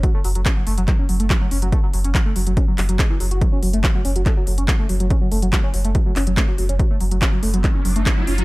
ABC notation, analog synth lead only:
X:1
M:4/4
L:1/16
Q:1/4=142
K:F#m
V:1 name="Analog synth lead" clef=bass
F, A, F, F, C F, A, F, F, C F, A, F, F, C F, | A, F, F, C F, A, F, F, C F, F, F, G, E, F, F | F, C F, A, F, F, C F, A, F, F, C F, A, F, F, | C F, A, F, F, C F, A, F, F, C F, A, F, F, C |
F, A, F, F, C F, A, F, F, C F, A, F, F, C F, |]